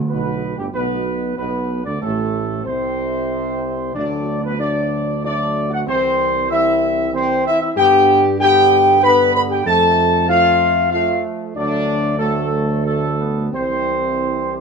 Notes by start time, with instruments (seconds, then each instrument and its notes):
0.09 tuba B1, trombone section B2, french horn section B3, trumpet section B4
0.58 tuba G1, trombone section G2, french horn section G3, trumpet section G4
0.72 tuba B1, trombone section B2, french horn section B3, trumpet section B4
1.37 tuba B1, trombone section B2, french horn section B3, trumpet section B4
1.84 tuba D2, trombone section D3, french horn section D4, trumpet section D5
2.00 tuba A1, trombone section A2, french horn section A3, trumpet section A4
2.64 tuba C2, trombone section C3, french horn section C4, trumpet section C5
3.94 tuba D2, timpani D3, trombone section F#3 A3, french horn section D4, trumpet section D5
4.43 french horn section B3, trumpet section B4
4.58 trombone section F#3 A3, french horn section D4, trumpet section D5
5.24 trombone section F#3 A3, french horn section D4, trumpet section D5
5.70 french horn section F#4, trumpet section F#5
5.85 tuba C2, trombone section E3 C4, french horn section C4, trumpet section C5
6.48 trombone section E3 C4, french horn section E4, trumpet section E5
7.12 trombone section E3 C4, french horn section C4, trumpet section C5
7.45 french horn section E4, trumpet section E5
7.61 french horn section E4, trumpet section E5
7.76 tuba G2, trombone section D3 B3, french horn section G4, trumpet section G5
8.39 trombone section D3 B3, french horn section G4, trumpet section G5
9.03 trombone section D3 B3, french horn section B4, trumpet section B5
9.34 trombone section D3, french horn section B4, trumpet section B5
9.49 french horn section G4, trumpet section G5
9.65 tuba F2, trombone section F3 A3, french horn section A4, trumpet section A5
10.28 trombone section F3 A3, french horn section F4, trumpet section F5
10.91 trombone section F3 A3, french horn section F4, trumpet section F5
11.56 tuba D2, trombone section F#3 A3, french horn section D4, trumpet section D5
12.18 trombone section F#3 A3, french horn section A3, trumpet section A4
12.84 trombone section F#3 A3, french horn section A3, trumpet section A4
13.18 trombone section B3
13.50 tuba C2, trombone section E3 C4, french horn section C4, trumpet section C5
14.54 trumpet section G4